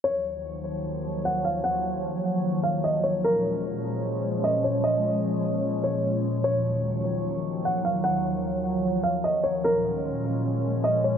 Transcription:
X:1
M:4/4
L:1/8
Q:1/4=150
K:Ebdor
V:1 name="Felt piano"
d4 z2 g f | g4- g f e d | B4 z2 e d | e4- e d3 |
d4 z2 g f | g4- g f e d | B4 z2 e d |]
V:2 name="Ambient pad" clef=bass
[E,,E,F,G,d]8- | [E,,E,F,G,d]8 | [B,,F,A,Dd]8- | [B,,F,A,Dd]8 |
[E,,E,F,G,d]8- | [E,,E,F,G,d]8 | [B,,F,A,Dd]8 |]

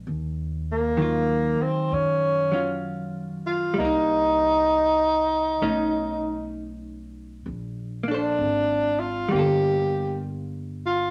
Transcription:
X:1
M:4/4
L:1/8
Q:"Swing" 1/4=65
K:Eblyd
V:1 name="Tenor saxophone"
z B,2 C _D2 z F | E6 z2 | z D2 F G2 z F |]
V:2 name="Hollow-body jazz guitar"
z2 [E,_G,F]3 [G,_DF]3 | [G,B,E]4 [A,^C^D]4 | z [B,DAc]3 [G,B,FA]4 |]
V:3 name="Upright bass" clef=bass
E,,3 z _G,,4 | C,,4 =B,,,4 | B,,,2 _A,,,2 G,,,4 |]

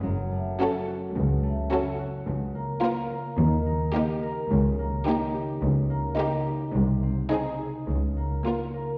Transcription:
X:1
M:4/4
L:1/8
Q:1/4=107
K:F#m
V:1 name="Violin section"
z2 A2 z2 A2 | [K:Ebmix] z2 B2 z2 G2 | z2 G2 z2 G2 | z2 A2 z2 B2 |]
V:2 name="Violin section"
z2 F2 z2 F2 | [K:Ebmix] z2 F2 z2 E2 | z2 E2 z2 E2 | z2 E2 z2 F2 |]
V:3 name="Harp"
[F,,C] A, C F C, A, C F | [K:Ebmix] D, B, F B, E, E G B | D, B, E G D, B, E G | C, C E A D, B, F B |]
V:4 name="Viola section"
z2 C2 z2 C2 | [K:Ebmix] z2 B,2 z2 B,2 | z2 B,2 z2 B,2 | z2 C2 z2 B,2 |]
V:5 name="Cello section" clef=bass
F,,2 z2 C,,2 z2 | [K:Ebmix] D,,2 z2 E,,2 z2 | D,,2 z2 D,,2 z2 | C,,2 z2 D,,2 z2 |]
V:6 name="Double bass section" clef=bass
F,,,2 z2 C,,2 z2 | [K:Ebmix] D,,2 z2 E,,2 z2 | D,,2 z2 D,,2 z2 | C,,2 z2 D,,2 z2 |]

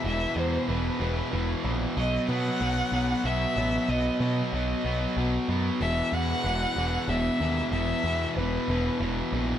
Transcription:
X:1
M:3/4
L:1/8
Q:1/4=94
K:Bphr
V:1 name="Violin"
e c B3 z | ^d f3 e2 | ^d d d3 z | e f3 e2 |
e2 B3 z |]
V:2 name="Distorted electric guitar" clef=bass
[E,,B,,E,] [E,,B,,E,] [E,,B,,E,] [E,,B,,E,] [E,,B,,E,] [E,,B,,E,] | [B,,F,B,] [B,,F,B,] [B,,F,B,] [B,,F,B,] [B,,F,B,] [B,,F,B,] | [B,,F,B,] [B,,F,B,] [B,,F,B,] [B,,F,B,] [B,,F,B,] [B,,F,B,] | [E,,B,,E,] [E,,B,,E,] [E,,B,,E,] [E,,B,,E,] [E,,B,,E,] [E,,B,,E,] |
[E,,B,,E,] [E,,B,,E,] [E,,B,,E,] [E,,B,,E,] [E,,B,,E,] [E,,B,,E,] |]
V:3 name="Picked electric bass" clef=bass
E,,, E,, E,,, E,,, E,,, ^A,,, | B,,, B,, B,,, B,,, B,,, A,,, | B,,, B,, B,,, B,,, B,,, F,, | E,,, E,, E,,, E,,, E,,, ^D,, |
E,,, E,, E,,, E,,, E,,, ^A,,, |]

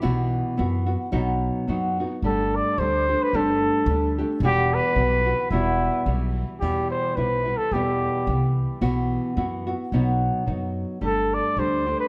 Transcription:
X:1
M:2/4
L:1/16
Q:"Swing" 1/4=109
K:Em
V:1 name="Trumpet"
z8 | z8 | A2 d2 c3 B | A6 z2 |
G2 B6 | E4 z4 | G2 c2 B3 A | G6 z2 |
z8 | z8 | A2 d2 c3 B |]
V:2 name="Nylon-string guitar"
[B,,E,B,EF]4 [E,B,EF]2 [B,EF]2 | [B,,F,B,^DF]4 [F,B,DF]2 [B,DF]2 | [G,A,DG]4 [G,A,DG]2 [A,DG]2 | [G,A,DG]4 [G,A,DG]2 [A,DG]2 |
[E,,B,,E,G,B,F]4 [E,G,B,F]2 [E,G,B,F]2 | [E,,B,,E,G,B,F]4 [E,G,B,F]4 | [E,,B,,E,G,B,E]4 [E,G,B,E]2 [E,G,B,E]2 | [E,,B,,E,G,B,E]4 [E,G,B,E]4 |
[B,,E,B,EF]4 [E,B,EF]2 [B,EF]2 | [B,,F,B,^DF]4 [F,B,DF]4 | [G,A,DG]4 [G,A,DG]2 [A,DG]2 |]
V:3 name="Upright bass" clef=bass
B,,,4 F,,4 | B,,,4 F,,4 | G,,,4 D,,4 | G,,,4 D,,4 |
E,,,4 B,,,4 | E,,,4 B,,,4 | E,,4 B,,,4 | E,,4 C,,4 |
B,,,4 F,,4 | B,,,4 F,,4 | G,,,4 D,,4 |]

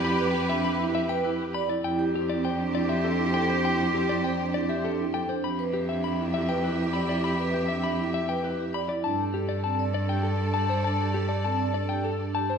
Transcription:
X:1
M:3/4
L:1/16
Q:1/4=100
K:Gmix
V:1 name="Clean electric guitar"
b z G e b z e g B z b d | g z G d g z d e A z g c | g z G d g z d e A z g c | b z G e b z e g B z b d |
b z G e b z e g B z b d | a z G d a z d g A z a c | a z G d a z d g A z a c |]
V:2 name="String section"
[GB]8- [GB]3 z | [Gc]12- | [Gc]8- [Gc]3 z | [Ge]12- |
[Ge]8- [Ge]3 z | [Ad]12- | [Ad]8- [Ad]3 z |]
V:3 name="Soprano saxophone"
G8- G3 z | G12- | G8- G3 z | G12- |
G8- G3 z | A12- | A8- A3 z |]
V:4 name="Vibraphone"
G B G D e E G B E G d E | E G E C c D E G D E A D | E G E C c D E G D E A D | G B G D e E G B E G d E |
G B G D e E G B E G d E | D G A G C d D G A D G c | D G A G C d D G A D G c |]
V:5 name="Cello" clef=bass
F,,12 | F,,12- | F,,12 | F,,12- |
F,,12 | G,,12- | G,,12 |]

